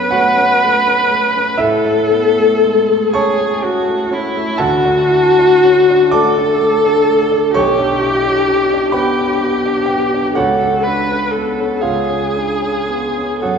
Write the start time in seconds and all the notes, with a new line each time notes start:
Already playing: F#2 B3 C#4 D4 G#4 B4 G#5
0.11 A3 F#4 C#5 F#5
0.37 C#4
0.64 A3
0.87 C#4
1.11 A3
1.36 C#4
1.57 A2 E4 A4 E5
1.85 A3
2.11 B3
2.38 A3
2.64 G#3
2.90 A3
3.13 C#4 G#4 C#5 A5 C#6
3.41 A3
3.62 C#4 F#4
3.88 A3
4.11 C#4 E4
4.36 A3
4.58 D2 F#4 A4 F#5 A5
4.85 D4
5.11 E4
5.39 D4
5.64 C#4
5.90 D4
6.11 A3 A4 D5 A5 D6
6.39 D4
6.60 A3
6.84 D4
7.09 A3
7.31 D4
7.54 B1 G4 C#5 C#6
7.79 D4
8.02 E4
8.26 D4
8.48 C#4
8.74 D4
8.92 B3 G4 B4 G5 B5
9.19 D4
9.41 B3
9.66 D4
9.86 B3 G4 G5
10.14 D4
10.35 C#2 F#4 A4 C#5 F#5
10.63 C#4
10.83 D4 B4
11.10 C#4
11.32 A4
11.36 B3
11.60 C#4
11.81 C#2 F4 G#4 C#5 F5
12.10 C#4
12.36 D4
12.62 C#4
12.88 B3
13.18 C#4
13.42 F#2 F#4 A4 C#5 F#5